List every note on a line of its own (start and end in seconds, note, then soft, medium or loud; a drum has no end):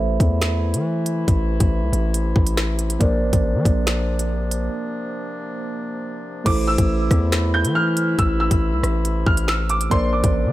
0.00 0.19 A1 loud
0.00 6.42 C3 medium
0.00 2.97 E3 medium
0.00 2.96 A3 medium
0.00 2.97 A3 medium
0.00 2.97 E4 medium
0.00 2.96 A4 medium
0.00 2.97 C5 medium
0.00 2.97 E5 medium
0.20 0.75 E2 loud
0.20 kick loud
0.20 closed hi-hat medium
0.42 finger snap medium
0.42 snare loud
0.42 closed hi-hat medium
0.74 1.25 E3 loud
0.74 closed hi-hat medium
1.06 closed hi-hat medium
1.28 1.59 A1 loud
1.28 kick loud
1.28 closed hi-hat medium
1.60 1.83 A1 loud
1.60 kick medium
1.60 closed hi-hat medium
1.82 1.92 C2 loud
1.93 2.34 A1 loud
1.93 closed hi-hat medium
2.14 closed hi-hat medium
2.36 2.98 A1 loud
2.36 kick loud
2.47 closed hi-hat medium
2.57 finger snap medium
2.57 snare loud
2.79 closed hi-hat medium
2.90 closed hi-hat medium
2.99 3.24 A#1 loud
2.99 6.42 F3 medium
2.99 6.41 A#3 medium
2.99 6.42 A#3 medium
2.99 6.42 D4 medium
2.99 6.42 A#4 medium
2.99 6.42 C5 medium
2.99 6.43 D5 medium
2.99 kick loud
2.99 closed hi-hat medium
3.22 3.32 A1 loud
3.33 3.56 A1 loud
3.33 kick medium
3.33 closed hi-hat medium
3.54 3.65 F3 loud
3.65 4.69 A#1 loud
3.65 kick medium
3.65 closed hi-hat medium
3.87 finger snap medium
3.87 snare loud
3.87 closed hi-hat medium
4.19 closed hi-hat medium
4.51 closed hi-hat medium
6.44 6.77 A1 loud
6.44 10.52 C3 medium
6.44 9.74 E3 medium
6.44 9.86 A3 medium
6.44 9.74 A3 medium
6.44 9.74 E4 medium
6.44 9.88 E4 medium
6.44 9.87 A4 medium
6.44 9.87 C5 medium
6.44 6.65 D6 loud
6.44 kick loud
6.44 closed hi-hat medium
6.44 crash loud
6.67 7.50 E6 medium
6.78 7.09 A1 loud
6.78 kick medium
6.78 closed hi-hat medium
7.11 7.66 E2 loud
7.11 kick loud
7.11 cross-stick medium
7.11 closed hi-hat medium
7.32 finger snap loud
7.32 snare loud
7.32 closed hi-hat medium
7.54 7.73 G6 medium
7.65 8.16 E3 loud
7.65 closed hi-hat medium
7.75 8.16 F6 medium
7.97 closed hi-hat medium
8.19 8.50 A1 loud
8.19 8.38 E6 loud
8.19 kick loud
8.19 closed hi-hat medium
8.40 9.22 E6 medium
8.51 8.74 A1 loud
8.51 kick medium
8.51 closed hi-hat medium
8.72 8.83 C2 loud
8.83 9.25 A1 loud
8.83 cross-stick medium
8.83 closed hi-hat medium
9.05 closed hi-hat medium
9.26 9.89 A1 loud
9.26 9.46 F6 medium
9.26 kick loud
9.37 closed hi-hat medium
9.48 9.67 E6 medium
9.48 finger snap medium
9.48 snare loud
9.69 9.89 D6 medium
9.69 closed hi-hat medium
9.81 closed hi-hat medium
9.90 10.14 A#1 loud
9.90 10.52 F3 medium
9.90 10.52 A#3 medium
9.90 10.52 D4 medium
9.90 10.52 A#4 medium
9.90 10.52 C5 medium
9.90 10.52 D5 medium
9.90 10.11 C6 loud
9.90 kick loud
9.90 closed hi-hat medium
10.13 10.23 A1 loud
10.13 10.52 D6 medium
10.24 10.47 A1 loud
10.24 kick loud
10.24 closed hi-hat medium
10.45 10.52 F3 loud